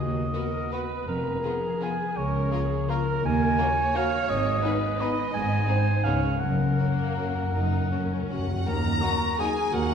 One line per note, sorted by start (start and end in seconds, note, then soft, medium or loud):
0.00 0.28 D#2 soft
0.00 0.28 D#2 medium
0.00 1.09 D#3 soft
0.00 0.32 F#4 soft
0.00 0.68 D#5 medium
0.16 2.18 B3 soft
0.34 0.49 B3 soft
0.34 0.44 B3 soft
0.34 0.89 F#4 soft
0.34 0.49 F#4 soft
0.34 0.43 F#4 soft
0.34 0.72 A#4 soft
0.34 0.42 B4 soft
0.53 1.09 F#5 soft
0.71 0.80 B3 soft
0.71 0.86 B3 soft
0.71 0.80 F#4 soft
0.71 0.86 F#4 soft
0.71 0.79 B4 soft
0.71 1.44 B4 soft
0.71 1.07 B4 medium
0.71 1.44 B4 soft
0.90 1.09 F#4 soft
1.07 1.38 F1 soft
1.07 1.38 F2 medium
1.07 3.25 F3 soft
1.07 1.80 A#4 medium
1.26 3.06 F4 soft
1.43 1.58 B3 soft
1.43 1.53 B3 soft
1.43 1.53 F4 soft
1.43 1.51 G#4 soft
1.43 1.58 G#4 soft
1.43 2.16 G#4 soft
1.43 1.98 B4 soft
1.63 2.19 G#5 soft
1.81 1.90 B3 soft
1.81 1.95 B3 soft
1.81 1.90 F4 soft
1.81 1.89 G#4 soft
1.81 1.95 G#4 soft
1.81 2.71 F5 soft
1.81 2.19 G#5 medium
1.99 2.18 B4 soft
2.17 2.47 C#2 medium
2.17 3.25 C#3 soft
2.17 2.53 A#4 soft
2.17 2.91 C#5 medium
2.35 3.40 A#3 soft
2.52 2.65 A#3 soft
2.52 2.60 A#3 soft
2.52 2.66 F4 soft
2.52 2.61 F4 soft
2.52 2.90 G#4 soft
2.52 2.89 A#4 soft
2.52 2.61 A#4 soft
2.72 3.26 F5 soft
2.89 3.01 A#3 soft
2.89 2.97 A#3 soft
2.89 2.97 F4 soft
2.89 3.02 F4 soft
2.89 3.24 A#4 medium
2.89 3.58 A#4 medium
2.89 3.58 A#4 soft
2.89 2.99 A#4 soft
3.07 3.25 F4 soft
3.24 3.53 D#2 medium
3.24 4.32 D#3 medium
3.24 3.98 G#5 medium
3.41 4.32 A#3 soft
3.58 3.72 A#3 soft
3.58 3.67 A#3 medium
3.58 3.67 F#4 soft
3.58 3.73 F#4 soft
3.58 3.66 A#4 soft
3.58 3.95 A#4 medium
3.58 4.65 C#5 medium
3.78 4.32 F#5 medium
3.95 4.03 A#3 medium
3.95 4.08 A#3 soft
3.95 4.03 F#4 medium
3.95 4.08 F#4 medium
3.95 4.32 A#4 soft
3.95 4.06 A#4 soft
3.95 4.31 F5 medium
4.14 4.32 F#4 soft
4.29 4.58 G#1 medium
4.29 5.33 G#2 medium
4.29 4.58 G#2 medium
4.29 5.03 D#5 medium
4.46 5.35 B3 soft
4.63 4.71 B3 medium
4.63 4.78 B3 medium
4.63 4.71 D#4 soft
4.63 4.77 D#4 soft
4.63 5.17 G#4 medium
4.63 4.73 G#4 soft
4.63 5.01 B4 medium
4.82 5.86 D#5 soft
5.00 5.08 B3 medium
5.00 5.14 B3 medium
5.00 5.08 D#4 medium
5.00 5.14 D#4 medium
5.00 5.09 G#4 soft
5.00 5.35 B4 soft
5.00 5.33 B4 medium
5.00 5.69 D#5 medium
5.18 5.67 G#4 soft
5.34 5.63 G#1 medium
5.34 6.07 G#2 medium
5.34 5.63 G#2 medium
5.34 6.05 G#5 loud
5.51 6.07 C4 soft
5.68 5.76 C4 medium
5.68 5.83 C4 soft
5.68 5.77 D#4 soft
5.68 5.82 D#4 soft
5.68 5.77 G#4 soft
5.68 6.06 C5 medium
5.87 6.43 D#5 soft
6.04 6.36 C#2 medium
6.04 6.36 C#3 medium
6.04 6.43 C#3 soft
6.04 6.14 B3 soft
6.04 6.19 B3 soft
6.04 6.13 D#4 soft
6.04 6.19 D#4 soft
6.04 6.14 G#4 soft
6.04 6.42 C#5 soft
6.04 6.41 F5 medium
6.24 6.43 D#4 soft
6.24 6.43 G#4 soft
6.39 6.72 F#1 soft
6.39 7.53 F#2 soft
6.39 6.48 F#2 soft
6.39 6.73 F#2 medium
6.39 8.45 A#4 soft
6.39 8.29 F#5 medium
6.49 6.56 F#2 soft
6.57 6.63 F#2 soft
6.57 7.71 A#3 soft
6.64 6.71 F#2 soft
6.73 6.80 F#2 soft
6.79 6.87 F#2 soft
6.79 7.50 A#3 soft
6.79 6.93 A#3 soft
6.79 6.93 C#4 soft
6.79 7.35 F#4 soft
6.79 6.87 F#4 soft
6.88 6.95 F#2 soft
6.97 7.03 F#2 soft
6.97 8.10 C#5 soft
7.05 7.11 F#2 soft
7.12 7.19 F#2 soft
7.17 7.27 F#2 soft
7.17 7.32 A#3 soft
7.17 7.31 C#4 soft
7.17 7.25 F#4 soft
7.17 8.29 A#4 soft
7.28 7.35 F#2 soft
7.36 7.42 F#2 soft
7.36 7.90 F#4 soft
7.43 7.50 F#2 soft
7.51 7.57 F#2 soft
7.51 8.68 F#2 soft
7.51 7.91 D#4 soft
7.55 7.86 F#1 soft
7.55 7.86 F#2 soft
7.55 7.64 F#2 soft
7.65 7.72 F#2 soft
7.73 7.81 F#2 soft
7.73 8.83 A#3 soft
7.82 7.89 F#2 soft
7.90 7.97 F#2 soft
7.90 8.06 A#3 soft
7.90 8.67 C#4 soft
7.90 8.06 C#4 soft
7.90 8.48 F#4 soft
7.90 8.00 F#4 soft
7.98 8.05 F#2 soft
8.06 8.13 F#2 soft
8.11 8.21 F#2 medium
8.11 8.68 C#5 soft
8.23 8.30 F#2 medium
8.30 8.38 F#2 medium
8.30 8.44 A#3 soft
8.30 8.44 C#4 soft
8.30 8.39 F#4 soft
8.30 8.69 F#4 soft
8.30 9.19 A#4 soft
8.30 8.64 F#5 medium
8.30 8.65 F#5 soft
8.39 8.45 F#2 medium
8.46 8.52 F#2 medium
8.46 9.00 F#4 soft
8.53 8.60 F#2 medium
8.66 8.96 D#2 medium
8.66 9.71 D#3 medium
8.66 9.17 D#3 medium
8.66 9.03 A#4 medium
8.66 9.41 A#4 medium
8.66 9.39 A#5 medium
8.66 9.38 A#5 medium
8.84 9.88 A#3 soft
9.01 9.11 F#3 soft
9.01 9.15 A#3 soft
9.01 9.11 A#3 soft
9.01 9.16 D#4 soft
9.01 9.11 D#4 soft
9.01 9.41 F#4 medium
9.01 9.94 F#4 soft
9.01 9.11 F#4 soft
9.20 9.54 A#4 soft
9.39 9.47 F#3 soft
9.39 9.51 A#3 soft
9.39 9.47 A#3 soft
9.39 9.47 D#4 soft
9.39 9.52 D#4 soft
9.39 9.47 F#4 soft
9.39 9.72 G#4 medium
9.39 9.94 F#5 soft
9.39 9.72 G#5 medium
9.39 9.73 G#5 medium
9.56 9.94 A#4 soft
9.72 9.94 D#2 medium
9.72 9.94 D#3 medium
9.72 9.94 F#4 medium
9.72 9.94 A#4 medium
9.72 9.94 F#5 medium
9.90 9.94 A#3 soft